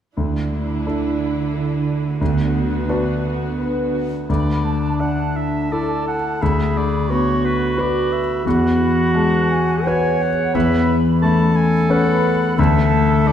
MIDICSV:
0, 0, Header, 1, 8, 480
1, 0, Start_track
1, 0, Tempo, 681044
1, 118, Time_signature, 3, 2, 24, 8
1, 2515, Tempo, 713436
1, 3955, Tempo, 687285
1, 6355, Tempo, 719424
1, 6835, Tempo, 678733
1, 9282, End_track
2, 0, Start_track
2, 0, Title_t, "Flute section"
2, 0, Program_c, 0, 73
2, 2996, Note_on_c, 0, 83, 35
2, 3216, Note_off_c, 0, 83, 0
2, 3234, Note_on_c, 0, 81, 37
2, 3463, Note_off_c, 0, 81, 0
2, 3471, Note_on_c, 0, 81, 38
2, 4424, Note_off_c, 0, 81, 0
2, 4442, Note_on_c, 0, 83, 33
2, 4915, Note_on_c, 0, 85, 37
2, 4917, Note_off_c, 0, 83, 0
2, 5392, Note_off_c, 0, 85, 0
2, 5395, Note_on_c, 0, 83, 41
2, 5869, Note_off_c, 0, 83, 0
2, 5878, Note_on_c, 0, 83, 35
2, 6348, Note_off_c, 0, 83, 0
2, 6352, Note_on_c, 0, 81, 50
2, 6588, Note_off_c, 0, 81, 0
2, 6591, Note_on_c, 0, 80, 49
2, 6828, Note_off_c, 0, 80, 0
2, 6830, Note_on_c, 0, 78, 45
2, 7315, Note_off_c, 0, 78, 0
2, 7321, Note_on_c, 0, 83, 46
2, 8070, Note_off_c, 0, 83, 0
2, 8280, Note_on_c, 0, 83, 57
2, 8749, Note_off_c, 0, 83, 0
2, 8763, Note_on_c, 0, 81, 46
2, 9282, Note_off_c, 0, 81, 0
2, 9282, End_track
3, 0, Start_track
3, 0, Title_t, "Oboe"
3, 0, Program_c, 1, 68
3, 3011, Note_on_c, 1, 74, 33
3, 3480, Note_on_c, 1, 78, 36
3, 3490, Note_off_c, 1, 74, 0
3, 3719, Note_on_c, 1, 76, 36
3, 3729, Note_off_c, 1, 78, 0
3, 3966, Note_on_c, 1, 74, 36
3, 3977, Note_off_c, 1, 76, 0
3, 4207, Note_off_c, 1, 74, 0
3, 4211, Note_on_c, 1, 78, 38
3, 4452, Note_on_c, 1, 76, 37
3, 4462, Note_off_c, 1, 78, 0
3, 4697, Note_on_c, 1, 74, 43
3, 4708, Note_off_c, 1, 76, 0
3, 4936, Note_on_c, 1, 73, 38
3, 4946, Note_off_c, 1, 74, 0
3, 5170, Note_on_c, 1, 71, 39
3, 5181, Note_off_c, 1, 73, 0
3, 5415, Note_on_c, 1, 74, 38
3, 5425, Note_off_c, 1, 71, 0
3, 5643, Note_on_c, 1, 76, 39
3, 5654, Note_off_c, 1, 74, 0
3, 5877, Note_off_c, 1, 76, 0
3, 5883, Note_on_c, 1, 78, 44
3, 6842, Note_on_c, 1, 80, 43
3, 6853, Note_off_c, 1, 78, 0
3, 7087, Note_on_c, 1, 78, 49
3, 7097, Note_off_c, 1, 80, 0
3, 7314, Note_off_c, 1, 78, 0
3, 7318, Note_on_c, 1, 76, 41
3, 7623, Note_off_c, 1, 76, 0
3, 7793, Note_on_c, 1, 81, 52
3, 8032, Note_on_c, 1, 80, 51
3, 8042, Note_off_c, 1, 81, 0
3, 8282, Note_on_c, 1, 78, 49
3, 8293, Note_off_c, 1, 80, 0
3, 8760, Note_off_c, 1, 78, 0
3, 8763, Note_on_c, 1, 76, 53
3, 9246, Note_on_c, 1, 74, 58
3, 9257, Note_off_c, 1, 76, 0
3, 9282, Note_off_c, 1, 74, 0
3, 9282, End_track
4, 0, Start_track
4, 0, Title_t, "Clarinet"
4, 0, Program_c, 2, 71
4, 2999, Note_on_c, 2, 62, 52
4, 3929, Note_off_c, 2, 62, 0
4, 3959, Note_on_c, 2, 69, 44
4, 4445, Note_on_c, 2, 68, 47
4, 4455, Note_off_c, 2, 69, 0
4, 4920, Note_on_c, 2, 66, 59
4, 4931, Note_off_c, 2, 68, 0
4, 5863, Note_off_c, 2, 66, 0
4, 5867, Note_on_c, 2, 66, 62
4, 6824, Note_on_c, 2, 73, 64
4, 6834, Note_off_c, 2, 66, 0
4, 7320, Note_on_c, 2, 71, 57
4, 7330, Note_off_c, 2, 73, 0
4, 7630, Note_off_c, 2, 71, 0
4, 7794, Note_on_c, 2, 69, 79
4, 8726, Note_off_c, 2, 69, 0
4, 8741, Note_on_c, 2, 69, 77
4, 9282, Note_off_c, 2, 69, 0
4, 9282, End_track
5, 0, Start_track
5, 0, Title_t, "Viola section"
5, 0, Program_c, 3, 48
5, 118, Note_on_c, 3, 62, 29
5, 119, Note_on_c, 3, 64, 30
5, 1524, Note_off_c, 3, 62, 0
5, 1525, Note_off_c, 3, 64, 0
5, 1552, Note_on_c, 3, 59, 39
5, 1554, Note_on_c, 3, 66, 38
5, 2833, Note_off_c, 3, 59, 0
5, 2834, Note_off_c, 3, 66, 0
5, 9282, End_track
6, 0, Start_track
6, 0, Title_t, "Grand piano"
6, 0, Program_c, 4, 0
6, 120, Note_on_c, 4, 38, 30
6, 243, Control_c, 4, 64, 127
6, 592, Note_off_c, 4, 38, 0
6, 608, Note_on_c, 4, 62, 21
6, 612, Note_on_c, 4, 64, 24
6, 613, Note_on_c, 4, 69, 26
6, 1526, Note_off_c, 4, 62, 0
6, 1528, Note_off_c, 4, 64, 0
6, 1528, Note_off_c, 4, 69, 0
6, 1558, Note_on_c, 4, 38, 39
6, 1565, Control_c, 4, 64, 0
6, 1663, Control_c, 4, 64, 127
6, 2016, Note_off_c, 4, 38, 0
6, 2039, Note_on_c, 4, 62, 32
6, 2040, Note_on_c, 4, 66, 34
6, 2043, Note_on_c, 4, 71, 35
6, 2975, Note_off_c, 4, 62, 0
6, 2976, Note_off_c, 4, 66, 0
6, 2977, Note_off_c, 4, 71, 0
6, 3003, Note_on_c, 4, 38, 39
6, 3009, Control_c, 4, 64, 0
6, 3131, Control_c, 4, 64, 127
6, 3479, Note_on_c, 4, 62, 28
6, 3967, Note_on_c, 4, 69, 28
6, 3969, Note_on_c, 4, 64, 25
6, 4256, Note_off_c, 4, 62, 0
6, 4418, Note_off_c, 4, 38, 0
6, 4421, Note_off_c, 4, 69, 0
6, 4422, Note_off_c, 4, 64, 0
6, 4454, Note_on_c, 4, 38, 39
6, 4455, Control_c, 4, 64, 0
6, 4561, Control_c, 4, 64, 127
6, 4929, Note_on_c, 4, 59, 28
6, 5399, Note_on_c, 4, 66, 29
6, 5403, Note_on_c, 4, 71, 35
6, 5685, Note_off_c, 4, 59, 0
6, 5846, Note_off_c, 4, 66, 0
6, 5848, Note_off_c, 4, 71, 0
6, 5849, Note_off_c, 4, 38, 0
6, 5882, Note_on_c, 4, 40, 42
6, 5883, Control_c, 4, 64, 0
6, 6010, Control_c, 4, 64, 127
6, 6354, Note_on_c, 4, 56, 35
6, 6838, Note_on_c, 4, 66, 34
6, 6840, Note_on_c, 4, 71, 40
6, 7126, Note_off_c, 4, 56, 0
6, 7291, Note_off_c, 4, 66, 0
6, 7292, Note_off_c, 4, 71, 0
6, 7295, Note_off_c, 4, 40, 0
6, 7319, Note_on_c, 4, 40, 46
6, 7329, Control_c, 4, 64, 0
6, 7437, Control_c, 4, 64, 127
6, 7802, Note_on_c, 4, 57, 34
6, 8273, Note_on_c, 4, 61, 38
6, 8276, Note_on_c, 4, 71, 40
6, 8565, Note_off_c, 4, 57, 0
6, 8727, Note_off_c, 4, 61, 0
6, 8728, Note_off_c, 4, 40, 0
6, 8728, Note_off_c, 4, 71, 0
6, 8761, Note_on_c, 4, 38, 55
6, 8768, Control_c, 4, 64, 0
6, 8885, Control_c, 4, 64, 127
6, 9238, Note_on_c, 4, 57, 38
6, 9282, Note_off_c, 4, 38, 0
6, 9282, Note_off_c, 4, 57, 0
6, 9282, End_track
7, 0, Start_track
7, 0, Title_t, "Harp"
7, 0, Program_c, 5, 46
7, 118, Note_on_c, 5, 50, 31
7, 366, Note_on_c, 5, 57, 24
7, 605, Note_on_c, 5, 62, 23
7, 840, Note_on_c, 5, 64, 25
7, 1082, Note_on_c, 5, 69, 32
7, 1317, Note_off_c, 5, 64, 0
7, 1325, Note_on_c, 5, 64, 27
7, 1552, Note_off_c, 5, 50, 0
7, 1560, Note_on_c, 5, 50, 42
7, 1572, Note_off_c, 5, 69, 0
7, 1573, Note_off_c, 5, 57, 0
7, 1575, Note_off_c, 5, 64, 0
7, 1797, Note_on_c, 5, 59, 31
7, 2027, Note_off_c, 5, 62, 0
7, 2035, Note_on_c, 5, 62, 34
7, 2283, Note_on_c, 5, 66, 35
7, 2522, Note_on_c, 5, 71, 42
7, 2756, Note_off_c, 5, 66, 0
7, 2764, Note_on_c, 5, 66, 31
7, 2996, Note_off_c, 5, 50, 0
7, 3004, Note_on_c, 5, 50, 38
7, 3019, Note_off_c, 5, 71, 0
7, 3020, Note_off_c, 5, 59, 0
7, 3020, Note_off_c, 5, 66, 0
7, 3236, Note_on_c, 5, 57, 29
7, 3465, Note_off_c, 5, 62, 0
7, 3474, Note_on_c, 5, 62, 28
7, 3711, Note_on_c, 5, 64, 25
7, 3956, Note_on_c, 5, 69, 35
7, 4198, Note_off_c, 5, 64, 0
7, 4206, Note_on_c, 5, 64, 30
7, 4442, Note_off_c, 5, 50, 0
7, 4450, Note_on_c, 5, 50, 35
7, 4463, Note_off_c, 5, 69, 0
7, 4464, Note_off_c, 5, 57, 0
7, 4465, Note_off_c, 5, 64, 0
7, 4676, Note_off_c, 5, 62, 0
7, 4685, Note_on_c, 5, 62, 31
7, 4924, Note_on_c, 5, 59, 27
7, 5158, Note_on_c, 5, 66, 33
7, 5392, Note_on_c, 5, 71, 39
7, 5624, Note_off_c, 5, 66, 0
7, 5632, Note_on_c, 5, 66, 34
7, 5866, Note_on_c, 5, 52, 41
7, 5892, Note_off_c, 5, 62, 0
7, 5894, Note_off_c, 5, 50, 0
7, 6110, Note_on_c, 5, 64, 35
7, 6347, Note_off_c, 5, 59, 0
7, 6355, Note_on_c, 5, 59, 31
7, 6593, Note_on_c, 5, 68, 33
7, 6823, Note_off_c, 5, 71, 0
7, 6832, Note_on_c, 5, 71, 43
7, 7066, Note_off_c, 5, 68, 0
7, 7075, Note_on_c, 5, 68, 40
7, 7303, Note_off_c, 5, 52, 0
7, 7312, Note_on_c, 5, 52, 52
7, 7335, Note_off_c, 5, 68, 0
7, 7337, Note_off_c, 5, 66, 0
7, 7545, Note_off_c, 5, 59, 0
7, 7554, Note_on_c, 5, 59, 41
7, 7792, Note_on_c, 5, 61, 40
7, 8261, Note_off_c, 5, 71, 0
7, 8269, Note_on_c, 5, 71, 45
7, 8747, Note_on_c, 5, 50, 49
7, 8772, Note_off_c, 5, 52, 0
7, 8773, Note_off_c, 5, 59, 0
7, 8773, Note_off_c, 5, 61, 0
7, 8773, Note_off_c, 5, 71, 0
7, 8837, Note_off_c, 5, 64, 0
7, 8989, Note_on_c, 5, 57, 46
7, 9231, Note_on_c, 5, 64, 34
7, 9282, Note_off_c, 5, 50, 0
7, 9282, Note_off_c, 5, 57, 0
7, 9282, Note_off_c, 5, 64, 0
7, 9282, End_track
8, 0, Start_track
8, 0, Title_t, "Cello section"
8, 0, Program_c, 6, 48
8, 122, Note_on_c, 6, 50, 29
8, 2833, Note_off_c, 6, 50, 0
8, 9282, End_track
0, 0, End_of_file